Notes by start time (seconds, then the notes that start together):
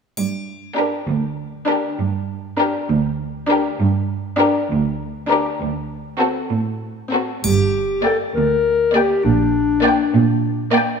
0.16 G2, triangle
0.77 D4 G4 A#4
1.08 D2
1.67 D4 G4 A#4
1.99 G2
2.59 D4 G4 A#4
2.89 D2
3.49 D4 G4 A#4
3.79 G2
4.38 D4 G4 A#4
4.69 D2
5.29 D4 G4 A#4
5.60 D2
6.20 C4 F#4 A4
6.51 A2
7.13 C4 F#4 A4
7.43 G1 G2 G4, triangle
8.03 A#3 A4 D5 G5
8.34 D2 A#4
8.94 A#3 G4 D5 G5
9.23 A#1 A#2 D4
9.84 A#3 D5 G5
10.14 A#2
10.73 A#3 D5 G5